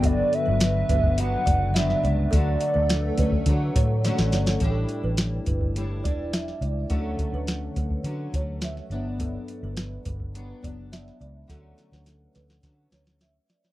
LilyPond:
<<
  \new Staff \with { instrumentName = "Soft synth lead" } { \time 4/4 \key d \major \tempo 4 = 105 d''8 e''4. fis''4 e''4 | d''2. r4 | r1 | r1 |
r1 | r1 | }
  \new Staff \with { instrumentName = "Kalimba" } { \time 4/4 \key d \major a'16 r8 b'16 r8 b'8. r16 d''16 r16 e''16 r16 d''16 r16 | a'16 r8 b'16 r8 b'8. r16 cis''16 r16 d''16 r16 cis''16 r16 | a'16 r8 b'16 r8 b'8. r16 d''16 r16 e''16 r16 d''16 r16 | a'16 r8 b'16 r8 b'8. r16 cis''16 r16 e''16 r16 d''16 r16 |
a'16 r8 b'16 r8 b'8. r16 d''16 r16 e''16 r16 d''16 r16 | a'16 r8 b'16 r8 b'8. r16 cis''16 r16 e''16 r16 d''16 r16 | }
  \new Staff \with { instrumentName = "Analog synth pad" } { \time 4/4 \key d \major << { <fis b'>1 | <a a'>1 | r1 | r1 |
r1 | r1 | } \\ { <d fis'>1~ | <d fis'>1 | r1 | r1 |
r1 | r1 | } >> }
  \new Staff \with { instrumentName = "Steel-string acoustic guitar" } { \time 4/4 \key d \major <g, fis b d'>4. <fis b d'>8 <g, fis b d'>4 <g, fis b d'>4 | <d fis a>4. <fis a cis'>8 <d fis a>4 <d fis a cis'>4 | <a, g d' e'>2 <a, g d' e'>8 <g d' e'>4. | <d fis a cis'>2 <d fis a cis'>8 <fis a cis'>4 <g, fis b d'>8~ |
<g, fis b d'>2 <g, fis b d'>8 <fis b d'>4. | <d fis a cis'>2 <d fis a cis'>8 <fis a cis'>4. | }
  \new Staff \with { instrumentName = "Fingered electric bass" } { \clef bass \time 4/4 \key d \major g,,8 r16 g,,8. g,,4 fis,,4 cis,8 | d,8 r16 d,8. d,8 d8 a,8. a,,16 g,,8 | a,,8 r16 a,,8. g,,4 e,,4 cis,8 | d,8 r16 d,8. d,8 d8 d,4 g,,8~ |
g,,8 r16 g,,8. g,,4 fis,,4 cis,8 | d,8 r16 d,8. d,8 d8 d,4 r8 | }
  \new DrumStaff \with { instrumentName = "Drums" } \drummode { \time 4/4 <hh bd>8 hh8 <hh sn>8 <hh bd>16 bd16 hh8 <hh bd>8 <hh sn>16 sn16 hh8 | <hh bd>8 hh8 <hh sn>8 <hh bd>16 bd16 <hh bd>8 <hh bd>8 <hh sn>16 sn16 <hh sn>16 <hh sn>16 | <hh bd>8 hh8 <hh sn>8 <hh bd>16 bd16 hh8 <hh bd>8 <hh sn>16 sn16 hh8 | <hh bd>8 <hh bd>8 <hh sn>8 <hh bd>16 bd16 hh8 <hh bd>8 <hh sn>16 sn16 hh8 |
<hh bd>8 hh8 <hh sn>8 <hh bd>16 bd16 hh8 <hh bd>8 <hh sn>16 sn16 hh8 | <hh bd sn>8 <hh sn>16 sn16 <hh sn>8 <hh sn>16 sn16 <hh bd sn>8 <hh sn>16 sn16 <hh sn>8 <hh sn>16 <hh sn>16 | }
>>